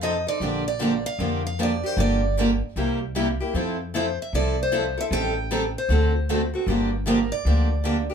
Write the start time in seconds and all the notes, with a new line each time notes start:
Already playing: F2
0.02 F3 C4 D#4 A4 D#5
0.27 C4 D#4 A4 D5
0.40 A#1 D3 F3 A#3 D4 G4
0.68 D5
0.79 D3 F3 A#3 D4 G4
1.06 F5
1.19 F2 D3 F3 A#3 D4 G4
1.47 F5
1.59 D3 F3 A#3 D4 G4
1.63 D5
1.83 A#3 D4 G4 C5
1.97 G1 D3 F3 A#3 D4 G4 D5
2.37 D3 F3 A#3 D4 G4
2.76 C2 C3 G3 A#3 E4 G4
3.15 C3 G3 A#3 E4 G4
3.40 A#3 E4 G4
3.54 F2 F3 C4 E4 A4
3.94 F3 C4 E4 A4 C5
4.22 E5
4.33 C2 F3 C4 E4 A4 D5
4.63 C5
4.72 F3 C4 E4 A4
4.98 C4 E4 A4 E5
5.11 A1 D#3 G3 C4 G4 A4 G5
5.51 D#3 G3 C4 G4 A4
5.78 C5
5.89 D2 D3 A3 C4 F#4 A4
6.29 D3 A3 C4 F#4 A4
6.54 C4 F#4 A4
6.67 G1 D3 F3 A#3 D4 G4
7.06 D3 F3 A#3 D4 G4 A#4
7.32 D5
7.45 D2 D3 F3 A#3 D4 G4
7.84 D3 F3 A#3 D4 G4
8.10 A#3 D4 G4